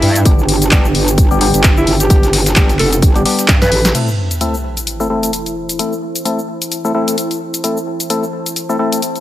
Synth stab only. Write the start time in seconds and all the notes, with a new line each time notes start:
0.25 G3 B3 D4 G4
0.72 G3 B3 D4 G4
1.31 G3 B3 D4 G4
1.41 G3 B3 D4 G4
2.10 G3 B3 D4 G4
2.56 G3 B3 D4 G4
3.16 G3 B3 D4 G4
3.25 G3 B3 D4 G4
3.95 A3 C4 E4 A4
4.41 A3 C4 E4 A4
5.00 A3 C4 E4 A4
5.10 A3 C4 E4 A4
5.79 A3 C4 E4 A4
6.25 A3 C4 E4 A4
6.85 A3 C4 E4 A4
6.95 A3 C4 E4 A4
7.64 A3 C4 E4 A4
8.10 A3 C4 E4 A4
8.69 A3 C4 E4 A4
8.79 A3 C4 E4 A4